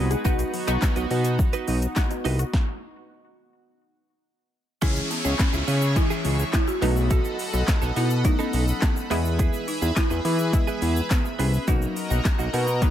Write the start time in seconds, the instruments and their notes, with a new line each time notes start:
Already playing: analog synth bass C2, analog synth pad G#3 D#4 F#4 G#4 B4
0.11 synth arpeggio sound G#4, closed hi-hat, shaker
0.24 analog synth bass B1, synth arpeggio sound F#3, synth pluck B3 D#4 F#4, analog synth pad B3 D#4 F#4, clean electric guitar D#4 F#4 B4, kick, shaker
0.39 synth arpeggio sound B3, closed hi-hat, shaker
0.53 synth arpeggio sound F#3, muted clean electric guitar stroke, open hi-hat, shaker
0.67 analog synth bass B1, synth pluck B3 D#4 F#4, synth arpeggio sound D#4, clean electric guitar D#4 F#4 B4, closed hi-hat, shaker
0.82 synth arpeggio sound F#3, muted clean electric guitar stroke, kick, snare, clap, shaker
0.96 analog synth bass B1, clean electric guitar D#4 F#4 B4, synth arpeggio sound F#4, closed hi-hat, shaker
1.10 analog synth bass B2, synth arpeggio sound F#3, clean electric guitar D#4 F#4 B4, open hi-hat, shaker
1.25 muted clean electric guitar stroke, closed hi-hat, shaker
1.39 synth arpeggio sound F#3, muted clean electric guitar stroke, kick, shaker
1.53 clean electric guitar D#4 F#4 B4, closed hi-hat, shaker
1.67 analog synth bass B1, synth arpeggio sound F#3, clean electric guitar D#4 F#4 B4, open hi-hat, shaker
1.82 muted clean electric guitar stroke, closed hi-hat, shaker
1.96 synth pluck B3 D#4 F#4, muted clean electric guitar stroke, kick, snare, clap, shaker
2.10 synth arpeggio sound D#4, muted clean electric guitar stroke, closed hi-hat, shaker
2.25 analog synth bass C2, clean electric guitar D#4 F#4 B4, open hi-hat, shaker
2.39 synth arpeggio sound F#4, muted clean electric guitar stroke, closed hi-hat, shaker
2.53 kick, snare
4.82 analog synth bass C#2, synth pluck E3 G#3 C#4 E4, clean electric guitar C#4 E4 G#4, analog synth pad G#4 C#5 E5 C#6, kick, closed hi-hat, crash, downlifter, shaker
4.96 shaker
5.10 marimba B3, muted clean electric guitar stroke, open hi-hat, shaker
5.25 analog synth bass C#2, clean electric guitar C#4 E4 G#4, shaker
5.39 marimba C#4, kick, snare, clap, closed hi-hat, shaker
5.53 analog synth bass C#2, clean electric guitar C#4 E4 G#4, shaker
5.67 analog synth bass C#3, clean electric guitar C#4 E4 G#4, open hi-hat, shaker
5.82 muted clean electric guitar stroke, shaker
5.96 synth pluck E3 G#3 C#4 E4, marimba E4, muted clean electric guitar stroke, kick, closed hi-hat, shaker
6.10 clean electric guitar C#4 E4 G#4, shaker
6.25 analog synth bass C#2, clean electric guitar C#4 E4 G#4, open hi-hat, shaker
6.39 shaker
6.53 marimba E4, muted clean electric guitar stroke, kick, snare, clap, closed hi-hat, shaker
6.68 marimba F#4, muted clean electric guitar stroke, shaker
6.82 analog synth bass B1, synth pluck F#3 A3 B3 D#4, clean electric guitar B3 D#4 A4, analog synth pad A4 D#5 F#5 B5, open hi-hat, shaker
6.96 muted clean electric guitar stroke, shaker
7.10 clean electric guitar B3 D#4 A4, marimba F#4, kick, closed hi-hat, shaker
7.25 shaker
7.39 muted clean electric guitar stroke, open hi-hat, shaker
7.53 analog synth bass B1, clean electric guitar B3 D#4 A4, shaker
7.68 kick, snare, clap, closed hi-hat, shaker
7.82 analog synth bass B1, clean electric guitar B3 D#4 A4, shaker
7.96 analog synth bass B2, clean electric guitar B3 D#4 A4, marimba E4, open hi-hat, shaker
8.10 muted clean electric guitar stroke, shaker
8.25 synth pluck F#3 A3 B3 D#4, marimba D#4, muted clean electric guitar stroke, kick, closed hi-hat, shaker
8.39 clean electric guitar B3 D#4 A4, marimba C#4, shaker
8.53 analog synth bass B1, clean electric guitar B3 D#4 A4, open hi-hat, shaker
8.68 shaker
8.82 marimba B3, muted clean electric guitar stroke, kick, snare, clap, closed hi-hat, shaker
8.96 muted clean electric guitar stroke, shaker
9.10 analog synth bass E2, synth pluck E3 G#3 B3 E4, clean electric guitar B3 E4 G#4, analog synth pad G#4 B4 E5, open hi-hat, shaker
9.25 muted clean electric guitar stroke, shaker
9.39 clean electric guitar B3 E4 G#4, kick, closed hi-hat, shaker
9.53 shaker
9.68 marimba D#4, muted clean electric guitar stroke, open hi-hat, shaker
9.82 analog synth bass E2, clean electric guitar B3 E4 G#4, shaker
9.96 marimba E4, kick, snare, clap, closed hi-hat, shaker
10.10 analog synth bass E2, clean electric guitar B3 E4 G#4, shaker
10.25 analog synth bass E3, clean electric guitar B3 E4 G#4, marimba E4, open hi-hat, shaker
10.39 shaker
10.53 synth pluck E3 G#3 B3 E4, muted clean electric guitar stroke, kick, closed hi-hat, shaker
10.67 clean electric guitar B3 E4 G#4, shaker
10.82 analog synth bass E2, clean electric guitar B3 E4 G#4, open hi-hat, shaker
10.97 shaker
11.10 marimba B3, muted clean electric guitar stroke, kick, snare, clap, closed hi-hat, shaker
11.25 muted clean electric guitar stroke, shaker
11.39 analog synth bass C2, clean electric guitar B3 E4 G#4, marimba C#4, open hi-hat, shaker
11.53 muted clean electric guitar stroke, shaker
11.67 analog synth bass B1, synth pluck F#3 A#3 B3 D#4, clean electric guitar A#3 D#4 F#4, marimba D#4, analog synth pad F#4 A#4 D#5 A#5, kick, closed hi-hat, shaker
11.82 shaker
11.96 muted clean electric guitar stroke, open hi-hat, shaker
12.10 analog synth bass B1, clean electric guitar A#3 D#4 F#4, shaker
12.25 kick, snare, clap, closed hi-hat, shaker
12.39 analog synth bass B1, clean electric guitar A#3 D#4 F#4, shaker
12.53 analog synth bass B2, clean electric guitar A#3 D#4 F#4, open hi-hat, shaker
12.68 muted clean electric guitar stroke, shaker
12.82 synth pluck F#3 A#3 B3 D#4, muted clean electric guitar stroke, kick, closed hi-hat, shaker